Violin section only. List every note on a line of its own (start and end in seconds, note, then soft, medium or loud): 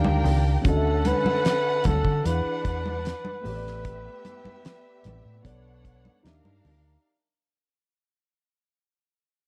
0.00 0.63 D4 medium
0.00 0.63 A#4 medium
0.00 0.63 G5 medium
0.64 2.21 C#4 medium
0.64 2.21 A4 medium
0.64 2.21 F#5 medium
2.24 3.42 D4 medium
2.24 3.42 B4 medium
2.24 3.42 F#5 medium
3.45 5.41 B3 medium
3.45 5.41 G4 medium
3.45 5.41 E5 medium
5.44 6.23 D4 medium
5.44 6.23 C#5 medium
5.44 6.23 F#5 medium
6.25 7.03 D4 medium
6.25 7.03 A#4 medium
6.25 7.03 F5 medium